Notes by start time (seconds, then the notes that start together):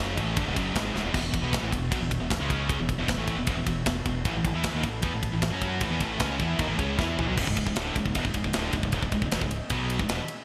Already playing: F#2 C#3 F#3 C#4 G#4 D#5 E5
0.00 F#1
0.17 A1 A2 E3 A3, kick, ride
0.35 G1 G2 D3, kick, ride
0.45 C#1 C#2 G#2
0.55 F#1 F#2 C#3 F#3, kick, ride
0.74 G#1 G#2 D#3 G#3, kick, snare, ride
0.94 C#1 C#2 G#2, snare
1.04 E1 E2 B2
1.13 E1 E2 B2 E3 B3 F#4 E5, kick, crash
1.22 E1 E2 B2
1.33 E1 E2 B2, kick, ride
1.43 B1 B2 F#3 B3
1.53 kick, snare, ride
1.62 A1 A2 E3
1.72 E1 E2 B2, kick, ride
1.91 B1 B2 F#3, kick, ride
2.00 E1 E2 B2
2.11 kick, ride
2.20 E1 E2 B2
2.30 kick, snare, ride
2.40 C#2 C#3 G#3 C#4 D#4 C#5
2.50 kick, ride
2.69 kick, ride
2.79 E1 E2 B2 E3 B3 F#4 E5
2.89 kick, ride
2.98 E1 E2 B2
3.07 E1 E2 B2, kick, snare, ride
3.17 A1 A2 E3 A3
3.27 kick, ride
3.36 E1 E2 B2
3.47 E1 E2 B2, kick, ride
3.55 E1 E2 B2
3.67 E1 E2 B2, kick, ride
3.86 E1 E2 B2, kick, snare, ride
4.05 E1 E2 B2, kick, ride
4.24 A1 A2 E3 A3 E4 B4 A5, kick, ride
4.34 A1 A2 E3
4.45 A1 A2 E3, kick, ride
4.53 E2 E3 B3 E4
4.64 kick, snare, ride
4.74 D#2 D#3 A#3
4.83 A1 A2 E3, kick, ride
5.02 E2 E3 B3, kick, ride
5.13 A1 A2 E3
5.23 kick, ride
5.33 A1 A2 E3
5.42 kick, snare, ride
5.51 F#2 F#3 C#4 F#4
5.61 kick, ride
5.81 A1 A2 E3, kick, ride
5.90 E2 E3 B3
6.00 A1 A2 E3 A3, kick, ride
6.20 C#2 C#3 G#3 C#4, kick, snare, ride
6.40 E2 E3 B3 E4, kick, ride
6.59 D#2 D#3 A#3, kick, ride
6.68 A1 A2 E3
6.78 C#2 C#3 G#3 C#4, kick, ride
6.98 E2 E3 B3 E4, kick, snare
7.17 A1 A2 E3, floor tom
7.27 B1 B2 F#3
7.36 C#1 C#2 G#2 C#4 G#4 D#5 E5, kick, crash
7.47 C#1 C#2 G#2, kick
7.55 C#1 C#2 G#2, kick, ride
7.65 C#1 C#2 G#2, kick
7.76 D1 D2 A2 D3, snare, ride
7.95 C#1 C#2 G#2, kick, ride
8.05 C#1 C#2 G#2, kick
8.15 E1 E2 B2, kick, ride
8.25 C#1 C#2 G#2, kick
8.34 C#1 C#2 G#2, kick, ride
8.44 C#1 C#2 G#2, kick
8.53 D1 D2 A2 D3, snare, ride
8.73 C#1 C#2 G#2, kick, ride
8.83 C#1 C#2 G#2, kick
8.92 C#1 C#2 G#2, kick, ride
9.02 C#1 C#2 G#2, kick
9.12 C#1 C#2 G#2, kick, ride
9.22 C#1 C#2, kick
9.26 G#2
9.31 E1 E2 B2, snare, ride
9.41 C#1 C#2 G#2, kick
9.51 ride
9.70 B1 B2 F#3 B3, kick, ride
9.90 ride
9.99 C#1 C#2 G#2, kick
10.09 E1 E2 B2, snare, ride
10.28 ride